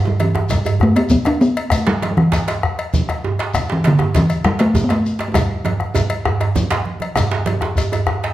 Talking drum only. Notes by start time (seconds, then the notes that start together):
0.07 G3
0.22 E3
0.52 G3
0.83 A3
0.96 B3
1.11 B3
1.27 D4
1.41 B3
1.72 A3
1.87 G3
2.11 G3
2.17 E3
3.72 E3
3.87 D3
4.17 E3
4.46 G3
4.61 A3
4.84 B3
4.92 A3
5.28 A3
5.34 G3